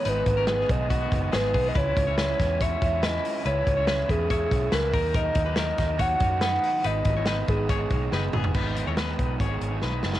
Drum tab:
CC |----------------|----------------|----------------|----------------|
HH |x-x-x-x-x-x-x-o-|x-x-x-x-x-x-x-o-|x-x-x-x-x-x-x-o-|x-x-x-x-x-x-x-o-|
SD |----o-------o---|----o-o-----o---|----o-------o---|----o-o-----o---|
T2 |----------------|----------------|----------------|----------------|
FT |----------------|----------------|----------------|----------------|
BD |--o---o-o-o---o-|o-o---o-o-o-----|--o---o-o-o---o-|o-o---o-o-o-----|

CC |----------------|x---------------|
HH |x-x-x-x-x-x-----|--x-x-x-x-x-----|
SD |----o-------o---|----o-------o-oo|
T2 |--------------o-|----------------|
FT |---------------o|----------------|
BD |--o---o-o-o-----|o-----o-o-------|